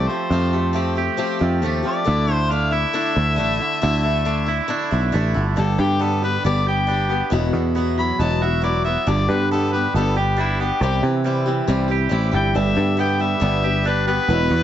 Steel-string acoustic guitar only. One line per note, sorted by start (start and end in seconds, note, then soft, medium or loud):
0.09 0.31 A3 soft
0.09 0.31 C4 medium
0.09 0.31 G4 medium
0.31 0.53 F3 medium
0.31 0.54 A3 medium
0.31 0.53 C4 medium
0.31 0.51 G4 medium
0.53 0.73 A3 soft
0.53 0.74 C4 soft
0.53 0.75 G4 soft
0.73 0.96 F3 medium
0.73 0.97 A3 medium
0.73 0.96 C4 medium
0.73 0.94 G4 medium
0.95 1.17 A3 soft
0.95 1.17 C4 medium
0.95 1.18 G4 medium
1.17 1.40 F3 medium
1.17 1.41 A3 loud
1.17 1.40 C4 loud
1.17 1.38 G4 loud
1.39 1.62 A3 medium
1.39 1.63 C4 medium
1.39 1.62 G4 medium
1.62 1.84 F3 medium
1.62 1.85 A3 medium
1.62 1.83 C4 medium
1.62 1.81 G4 medium
1.82 2.04 A3 soft
1.82 2.06 C4 soft
1.82 2.06 G4 medium
2.05 2.28 D3 medium
2.05 2.28 A3 medium
2.05 2.27 D4 medium
2.05 2.26 E4 medium
2.27 2.50 A3 soft
2.27 2.51 D4 soft
2.27 2.50 E4 medium
2.50 2.72 D3 medium
2.50 2.73 A3 medium
2.50 2.72 D4 medium
2.50 2.70 E4 medium
2.71 2.92 A3 soft
2.71 2.93 D4 medium
2.71 2.94 E4 medium
2.93 3.16 D3 medium
2.93 3.16 A3 medium
2.93 3.15 D4 medium
2.93 3.13 E4 medium
3.14 3.37 D4 medium
3.14 3.37 E4 medium
3.18 3.37 A3 soft
3.36 3.59 D3 medium
3.36 3.60 A3 medium
3.36 3.59 D4 medium
3.36 3.58 E4 medium
3.59 3.81 A3 soft
3.59 3.82 D4 medium
3.59 3.82 E4 medium
3.82 4.04 D3 medium
3.82 4.04 A3 medium
3.82 4.04 D4 medium
3.82 4.02 E4 medium
4.03 4.25 A3 medium
4.03 4.27 D4 soft
4.03 4.25 E4 medium
4.25 4.48 D3 medium
4.25 4.48 A3 medium
4.25 4.47 D4 medium
4.25 4.45 E4 medium
4.46 4.68 A3 soft
4.46 4.69 D4 medium
4.46 4.69 E4 medium
4.68 4.91 D3 loud
4.68 4.91 A3 loud
4.68 4.91 D4 loud
4.68 4.90 E4 loud
4.91 5.12 A3 medium
4.91 5.13 D4 medium
4.91 5.13 E4 medium
5.12 5.35 D3 medium
5.12 5.35 A3 medium
5.12 5.35 D4 medium
5.12 5.33 E4 medium
5.34 5.57 A3 medium
5.34 5.57 D4 medium
5.34 5.57 E4 medium
5.56 5.79 G2 medium
5.56 5.79 D3 medium
5.56 5.79 G3 medium
5.56 5.79 B3 medium
5.56 5.78 D4 medium
5.56 5.77 G4 medium
5.78 5.98 G3 soft
5.78 6.00 B3 soft
5.78 6.01 D4 soft
5.78 6.01 G4 medium
5.99 6.22 G3 medium
5.99 6.23 B3 medium
5.99 6.23 D4 medium
5.99 6.21 G4 medium
6.22 6.44 G3 soft
6.22 6.45 B3 soft
6.22 6.45 D4 medium
6.22 6.45 G4 soft
6.44 6.66 G2 medium
6.44 6.67 D3 medium
6.44 6.67 G3 medium
6.44 6.67 B3 medium
6.44 6.66 D4 medium
6.44 6.65 G4 loud
6.66 6.86 G3 soft
6.66 6.87 B3 soft
6.66 6.88 D4 medium
6.66 6.88 G4 medium
6.87 7.10 G3 medium
6.87 7.10 B3 medium
6.87 7.08 D4 medium
6.91 7.07 G4 medium
7.09 7.31 G3 soft
7.09 7.31 B3 soft
7.09 7.32 D4 medium
7.09 7.31 G4 medium
7.30 7.53 E2 medium
7.30 7.54 B2 medium
7.30 7.54 F#3 medium
7.30 7.54 B3 medium
7.30 7.53 E4 medium
7.30 7.52 F#4 medium
7.53 7.74 F#3 soft
7.53 7.75 B3 medium
7.53 7.76 E4 medium
7.53 7.75 F#4 medium
7.75 7.97 F#3 medium
7.75 7.98 B3 medium
7.75 7.98 E4 medium
7.75 7.96 F#4 medium
7.97 8.19 F#3 soft
7.97 8.20 B3 soft
7.97 8.20 E4 medium
7.97 8.19 F#4 medium
8.20 8.41 E2 medium
8.20 8.42 B2 medium
8.20 8.42 F#3 medium
8.20 8.42 B3 medium
8.20 8.42 E4 medium
8.20 8.40 F#4 medium
8.42 8.61 F#3 soft
8.42 8.62 B3 soft
8.42 8.63 E4 medium
8.42 8.63 F#4 medium
8.62 8.84 F#3 medium
8.62 8.85 B3 medium
8.62 8.85 E4 medium
8.62 8.83 F#4 medium
8.84 9.07 F#3 soft
8.84 9.07 B3 soft
8.84 9.07 E4 soft
8.84 9.06 F#4 medium
9.07 9.29 G2 medium
9.07 9.29 D3 medium
9.07 9.29 G3 medium
9.07 9.29 B3 medium
9.07 9.28 D4 medium
9.07 9.27 G4 medium
9.28 9.50 G3 soft
9.28 9.50 B3 soft
9.28 9.51 D4 soft
9.28 9.50 G4 medium
9.51 9.73 G3 medium
9.51 9.73 B3 medium
9.51 9.73 D4 medium
9.51 9.72 G4 medium
9.73 9.95 G3 soft
9.73 9.95 B3 medium
9.73 9.95 D4 medium
9.73 9.94 G4 medium
9.95 10.16 G2 medium
9.95 10.17 D3 medium
9.95 10.17 G3 medium
9.95 10.17 B3 medium
9.95 10.16 D4 medium
9.95 10.15 G4 medium
10.16 10.35 G3 soft
10.16 10.37 B3 soft
10.16 10.38 D4 medium
10.16 10.38 G4 medium
10.37 10.59 G3 medium
10.37 10.60 B3 medium
10.37 10.60 D4 medium
10.37 10.59 G4 medium
10.60 10.82 G3 soft
10.60 10.83 B3 soft
10.60 10.82 D4 medium
10.60 10.81 G4 medium
10.82 11.03 C3 medium
10.82 11.04 G3 medium
10.82 11.04 C4 medium
10.82 11.03 E4 medium
10.82 11.02 G4 medium
11.03 11.24 C4 soft
11.03 11.25 E4 soft
11.03 11.25 G4 medium
11.24 11.46 G3 medium
11.24 11.47 C4 medium
11.24 11.46 E4 medium
11.24 11.44 G4 medium
11.46 11.68 C4 medium
11.46 11.69 E4 medium
11.46 11.68 G4 medium
11.68 11.90 C3 medium
11.68 11.90 G3 loud
11.68 11.90 C4 medium
11.68 11.88 E4 medium
11.68 11.87 G4 medium
11.88 12.10 C4 soft
11.88 12.10 E4 medium
11.88 12.11 G4 medium
12.09 12.32 G3 medium
12.09 12.33 C4 medium
12.09 12.32 E4 medium
12.09 12.30 G4 medium
12.31 12.55 C4 soft
12.31 12.55 E4 medium
12.31 12.54 G4 medium
12.55 12.77 G2 medium
12.55 12.77 D3 medium
12.55 12.77 G3 medium
12.55 12.76 B3 medium
12.55 12.75 D4 medium
12.55 12.74 G4 medium
12.75 12.96 G3 soft
12.75 12.97 B3 soft
12.75 12.98 D4 soft
12.75 12.98 G4 medium
12.97 13.19 G3 medium
12.97 13.20 B3 medium
12.97 13.19 D4 medium
12.97 13.18 G4 medium
13.20 13.40 G3 soft
13.20 13.40 B3 soft
13.20 13.41 D4 soft
13.20 13.41 G4 medium
13.40 13.63 G2 medium
13.40 13.63 D3 medium
13.40 13.63 G3 medium
13.40 13.63 B3 medium
13.40 13.62 D4 loud
13.40 13.61 G4 medium
13.62 13.82 G3 soft
13.62 13.84 B3 soft
13.62 13.85 D4 medium
13.62 13.85 G4 medium
13.84 14.06 G3 medium
13.84 14.07 B3 medium
13.84 14.07 D4 medium
13.84 14.06 G4 medium
14.07 14.30 G3 soft
14.07 14.29 B3 medium
14.07 14.29 D4 soft
14.07 14.29 G4 medium
14.29 14.51 E2 medium
14.29 14.51 B2 medium
14.29 14.51 F#3 medium
14.29 14.51 B3 medium
14.29 14.51 E4 medium
14.29 14.49 F#4 medium
14.51 14.63 F#3 soft
14.51 14.63 B3 soft
14.51 14.63 E4 soft
14.51 14.63 F#4 medium